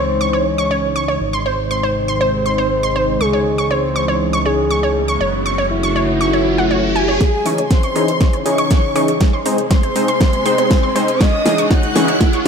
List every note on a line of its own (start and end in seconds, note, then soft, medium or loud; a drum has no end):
0.00 1.18 C#2 medium
0.00 1.17 C#3 medium
0.00 1.19 E3 medium
0.00 1.19 G#3 medium
0.00 1.19 D#4 medium
0.00 0.47 C5 loud
0.21 0.28 C#6 loud
0.33 0.40 C#5 medium
0.46 1.11 C#5 medium
0.58 0.65 C#6 loud
0.71 0.78 C#5 medium
0.96 1.03 C#6 loud
1.08 1.15 C#5 medium
1.21 3.18 G#1 medium
1.21 3.19 C3 medium
1.21 3.19 D#3 medium
1.21 5.17 G#3 medium
1.21 5.17 D#4 medium
1.33 1.40 C6 loud
1.46 1.53 C5 medium
1.71 3.22 C5 loud
1.71 1.78 C6 loud
1.83 1.90 C5 medium
2.08 2.15 C6 loud
2.21 2.28 C5 medium
2.46 2.53 C6 loud
2.58 2.65 C5 medium
2.83 2.90 C6 loud
2.96 3.03 C5 medium
3.21 5.18 C#2 medium
3.21 5.19 C#3 medium
3.21 5.19 E3 medium
3.21 3.66 G#4 loud
3.21 3.28 C#6 loud
3.21 riser medium
3.33 3.40 C#5 medium
3.58 3.65 C#6 loud
3.71 4.36 C5 loud
3.71 3.78 C#5 medium
3.96 4.03 C#6 loud
4.08 4.15 C#5 medium
4.33 4.40 C#6 loud
4.46 5.11 G#4 medium
4.46 4.53 C#5 medium
4.71 4.78 C#6 loud
4.83 4.90 C#5 medium
5.08 5.15 C#6 loud
5.21 7.18 F#1 medium
5.21 7.19 C#3 medium
5.21 7.19 F#3 medium
5.21 7.19 A3 medium
5.21 7.19 F#4 medium
5.21 5.28 C#5 medium
5.46 5.53 C#6 loud
5.58 5.65 C#5 medium
5.71 7.11 E4 loud
5.83 5.90 C#6 loud
5.96 6.03 C#5 medium
6.21 6.28 C#6 loud
6.33 6.40 C#5 medium
6.58 6.69 F#5 medium
6.71 6.81 C#5 medium
6.96 7.06 G#5 loud
7.08 7.13 C#5 medium
7.21 9.19 C#3 medium
7.21 9.19 E3 medium
7.21 9.19 D#4 medium
7.21 7.66 G#4 loud
7.21 12.48 G#4 medium
7.21 7.28 C#5 medium
7.21 7.66 G#5 loud
7.21 kick loud
7.21 snare soft
7.21 closed hi-hat medium
7.21 riser medium
7.46 7.60 E3 medium
7.46 7.60 C#4 medium
7.46 7.60 D#4 medium
7.46 7.60 G#4 medium
7.46 7.53 C#6 loud
7.46 open hi-hat loud
7.58 7.65 C#5 medium
7.58 closed hi-hat medium
7.71 8.36 C5 loud
7.71 8.36 C6 loud
7.71 kick loud
7.71 snare soft
7.71 closed hi-hat medium
7.83 7.90 C#6 loud
7.83 closed hi-hat soft
7.96 8.10 E3 medium
7.96 8.10 C#4 medium
7.96 8.10 D#4 medium
7.96 8.10 G#4 loud
7.96 8.03 C#5 medium
7.96 open hi-hat medium
8.08 closed hi-hat medium
8.21 8.28 C#6 loud
8.21 kick loud
8.21 snare medium
8.21 closed hi-hat medium
8.33 8.40 C#5 medium
8.33 closed hi-hat soft
8.46 8.93 E3 medium
8.46 8.93 C#4 medium
8.46 8.93 D#4 medium
8.46 8.93 G#4 loud
8.46 9.11 C#5 loud
8.46 9.11 C#6 medium
8.46 open hi-hat loud
8.58 8.65 C#6 loud
8.58 closed hi-hat medium
8.71 8.78 C#5 medium
8.71 kick loud
8.71 snare medium
8.71 closed hi-hat medium
8.96 9.10 E3 medium
8.96 9.10 C#4 medium
8.96 9.10 D#4 medium
8.96 9.10 G#4 loud
8.96 9.03 C#6 loud
8.96 open hi-hat medium
9.08 9.15 C#5 medium
9.08 closed hi-hat medium
9.21 11.19 C3 medium
9.21 11.19 G#3 medium
9.21 kick loud
9.21 snare medium
9.21 closed hi-hat medium
9.33 9.40 C6 loud
9.46 9.60 G#3 medium
9.46 9.60 C4 medium
9.46 9.60 D#4 medium
9.46 9.60 C5 medium
9.46 9.53 C5 medium
9.46 open hi-hat loud
9.58 closed hi-hat medium
9.71 11.22 C5 loud
9.71 9.78 C6 loud
9.71 11.21 C6 loud
9.71 kick loud
9.71 snare medium
9.71 closed hi-hat medium
9.83 9.90 C5 medium
9.83 closed hi-hat soft
9.96 10.10 G#3 medium
9.96 10.10 C4 medium
9.96 10.10 D#4 medium
9.96 10.10 C5 loud
9.96 open hi-hat medium
10.08 10.15 C6 loud
10.08 closed hi-hat medium
10.21 10.28 C5 medium
10.21 kick loud
10.21 snare medium
10.21 closed hi-hat medium
10.33 closed hi-hat soft
10.46 10.93 G#3 medium
10.46 10.93 C4 medium
10.46 10.93 D#4 medium
10.46 10.93 C5 loud
10.46 10.53 C6 loud
10.46 open hi-hat loud
10.58 10.65 C5 medium
10.58 closed hi-hat medium
10.71 kick loud
10.71 snare medium
10.71 closed hi-hat medium
10.83 10.90 C6 loud
10.96 11.10 G#3 medium
10.96 11.10 C4 medium
10.96 11.10 D#4 medium
10.96 11.03 C5 medium
10.96 11.10 C5 loud
10.96 open hi-hat medium
11.08 closed hi-hat medium
11.21 12.48 C#3 medium
11.21 12.48 G#3 medium
11.21 11.66 D#5 loud
11.21 11.28 C#6 loud
11.21 11.66 D#6 loud
11.21 kick loud
11.21 snare medium
11.21 closed hi-hat medium
11.33 11.40 C#5 medium
11.46 11.60 E3 medium
11.46 11.60 C#4 medium
11.46 11.60 D#4 medium
11.46 11.60 G#4 medium
11.46 snare medium
11.46 open hi-hat loud
11.58 11.65 C#6 loud
11.58 closed hi-hat medium
11.71 11.78 C#5 medium
11.71 12.36 F#5 loud
11.71 12.36 F#6 loud
11.71 kick loud
11.71 snare medium
11.71 closed hi-hat medium
11.83 closed hi-hat soft
11.96 12.10 E3 medium
11.96 12.10 C#4 medium
11.96 12.10 D#4 medium
11.96 12.10 G#4 loud
11.96 12.03 C#6 loud
11.96 snare medium
11.96 open hi-hat medium
12.08 12.15 C#5 medium
12.08 closed hi-hat soft
12.21 kick loud
12.21 snare medium
12.21 closed hi-hat medium
12.33 12.40 C#6 loud
12.33 closed hi-hat soft